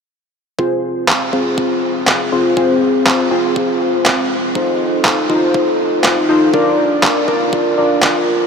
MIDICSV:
0, 0, Header, 1, 3, 480
1, 0, Start_track
1, 0, Tempo, 495868
1, 567, Time_signature, 4, 2, 24, 8
1, 8198, End_track
2, 0, Start_track
2, 0, Title_t, "Analog polysynth"
2, 0, Program_c, 0, 90
2, 567, Note_on_c, 0, 60, 72
2, 567, Note_on_c, 0, 65, 63
2, 567, Note_on_c, 0, 68, 64
2, 568, Note_on_c, 0, 72, 78
2, 1258, Note_off_c, 0, 60, 0
2, 1258, Note_off_c, 0, 65, 0
2, 1258, Note_off_c, 0, 68, 0
2, 1259, Note_off_c, 0, 72, 0
2, 1287, Note_on_c, 0, 60, 80
2, 1287, Note_on_c, 0, 65, 76
2, 1287, Note_on_c, 0, 68, 76
2, 1287, Note_on_c, 0, 72, 90
2, 2218, Note_off_c, 0, 60, 0
2, 2218, Note_off_c, 0, 65, 0
2, 2218, Note_off_c, 0, 68, 0
2, 2218, Note_off_c, 0, 72, 0
2, 2248, Note_on_c, 0, 60, 86
2, 2248, Note_on_c, 0, 72, 99
2, 2249, Note_on_c, 0, 65, 84
2, 2249, Note_on_c, 0, 68, 79
2, 2459, Note_off_c, 0, 60, 0
2, 2459, Note_off_c, 0, 65, 0
2, 2459, Note_off_c, 0, 68, 0
2, 2459, Note_off_c, 0, 72, 0
2, 2487, Note_on_c, 0, 60, 88
2, 2487, Note_on_c, 0, 65, 83
2, 2487, Note_on_c, 0, 68, 80
2, 2487, Note_on_c, 0, 72, 96
2, 3178, Note_off_c, 0, 60, 0
2, 3178, Note_off_c, 0, 65, 0
2, 3178, Note_off_c, 0, 68, 0
2, 3178, Note_off_c, 0, 72, 0
2, 3205, Note_on_c, 0, 72, 102
2, 3206, Note_on_c, 0, 65, 83
2, 3206, Note_on_c, 0, 68, 82
2, 3207, Note_on_c, 0, 60, 89
2, 4378, Note_off_c, 0, 60, 0
2, 4378, Note_off_c, 0, 65, 0
2, 4378, Note_off_c, 0, 68, 0
2, 4378, Note_off_c, 0, 72, 0
2, 4406, Note_on_c, 0, 63, 67
2, 4406, Note_on_c, 0, 69, 63
2, 4406, Note_on_c, 0, 72, 76
2, 4407, Note_on_c, 0, 65, 63
2, 5098, Note_off_c, 0, 63, 0
2, 5098, Note_off_c, 0, 65, 0
2, 5098, Note_off_c, 0, 69, 0
2, 5098, Note_off_c, 0, 72, 0
2, 5127, Note_on_c, 0, 63, 83
2, 5127, Note_on_c, 0, 69, 75
2, 5128, Note_on_c, 0, 65, 75
2, 5128, Note_on_c, 0, 72, 90
2, 6058, Note_off_c, 0, 69, 0
2, 6059, Note_off_c, 0, 63, 0
2, 6059, Note_off_c, 0, 65, 0
2, 6059, Note_off_c, 0, 72, 0
2, 6088, Note_on_c, 0, 63, 91
2, 6088, Note_on_c, 0, 65, 80
2, 6088, Note_on_c, 0, 69, 81
2, 6088, Note_on_c, 0, 72, 101
2, 6299, Note_off_c, 0, 63, 0
2, 6299, Note_off_c, 0, 65, 0
2, 6299, Note_off_c, 0, 69, 0
2, 6299, Note_off_c, 0, 72, 0
2, 6328, Note_on_c, 0, 62, 86
2, 6328, Note_on_c, 0, 65, 79
2, 6328, Note_on_c, 0, 70, 79
2, 6328, Note_on_c, 0, 74, 97
2, 7019, Note_off_c, 0, 62, 0
2, 7019, Note_off_c, 0, 65, 0
2, 7019, Note_off_c, 0, 70, 0
2, 7019, Note_off_c, 0, 74, 0
2, 7047, Note_on_c, 0, 74, 100
2, 7048, Note_on_c, 0, 65, 84
2, 7048, Note_on_c, 0, 70, 82
2, 7049, Note_on_c, 0, 62, 86
2, 7503, Note_off_c, 0, 74, 0
2, 7504, Note_off_c, 0, 62, 0
2, 7504, Note_off_c, 0, 65, 0
2, 7504, Note_off_c, 0, 70, 0
2, 7528, Note_on_c, 0, 74, 85
2, 7529, Note_on_c, 0, 62, 78
2, 7529, Note_on_c, 0, 65, 72
2, 7529, Note_on_c, 0, 70, 72
2, 8198, Note_off_c, 0, 62, 0
2, 8198, Note_off_c, 0, 65, 0
2, 8198, Note_off_c, 0, 70, 0
2, 8198, Note_off_c, 0, 74, 0
2, 8198, End_track
3, 0, Start_track
3, 0, Title_t, "Drums"
3, 567, Note_on_c, 9, 36, 104
3, 664, Note_off_c, 9, 36, 0
3, 1047, Note_on_c, 9, 36, 105
3, 1049, Note_on_c, 9, 39, 107
3, 1144, Note_off_c, 9, 36, 0
3, 1146, Note_off_c, 9, 39, 0
3, 1287, Note_on_c, 9, 36, 55
3, 1384, Note_off_c, 9, 36, 0
3, 1527, Note_on_c, 9, 36, 108
3, 1624, Note_off_c, 9, 36, 0
3, 2007, Note_on_c, 9, 36, 100
3, 2007, Note_on_c, 9, 39, 105
3, 2104, Note_off_c, 9, 36, 0
3, 2104, Note_off_c, 9, 39, 0
3, 2487, Note_on_c, 9, 36, 110
3, 2584, Note_off_c, 9, 36, 0
3, 2967, Note_on_c, 9, 36, 105
3, 2967, Note_on_c, 9, 39, 107
3, 3064, Note_off_c, 9, 36, 0
3, 3064, Note_off_c, 9, 39, 0
3, 3448, Note_on_c, 9, 36, 111
3, 3545, Note_off_c, 9, 36, 0
3, 3927, Note_on_c, 9, 39, 111
3, 3928, Note_on_c, 9, 36, 108
3, 4024, Note_off_c, 9, 39, 0
3, 4025, Note_off_c, 9, 36, 0
3, 4408, Note_on_c, 9, 36, 112
3, 4505, Note_off_c, 9, 36, 0
3, 4887, Note_on_c, 9, 39, 108
3, 4888, Note_on_c, 9, 36, 115
3, 4983, Note_off_c, 9, 39, 0
3, 4984, Note_off_c, 9, 36, 0
3, 5127, Note_on_c, 9, 36, 60
3, 5224, Note_off_c, 9, 36, 0
3, 5367, Note_on_c, 9, 36, 117
3, 5464, Note_off_c, 9, 36, 0
3, 5846, Note_on_c, 9, 39, 111
3, 5847, Note_on_c, 9, 36, 111
3, 5943, Note_off_c, 9, 39, 0
3, 5944, Note_off_c, 9, 36, 0
3, 6327, Note_on_c, 9, 36, 109
3, 6424, Note_off_c, 9, 36, 0
3, 6807, Note_on_c, 9, 36, 112
3, 6807, Note_on_c, 9, 39, 109
3, 6904, Note_off_c, 9, 36, 0
3, 6904, Note_off_c, 9, 39, 0
3, 7048, Note_on_c, 9, 36, 58
3, 7144, Note_off_c, 9, 36, 0
3, 7287, Note_on_c, 9, 36, 116
3, 7384, Note_off_c, 9, 36, 0
3, 7767, Note_on_c, 9, 39, 115
3, 7768, Note_on_c, 9, 36, 111
3, 7864, Note_off_c, 9, 39, 0
3, 7865, Note_off_c, 9, 36, 0
3, 8198, End_track
0, 0, End_of_file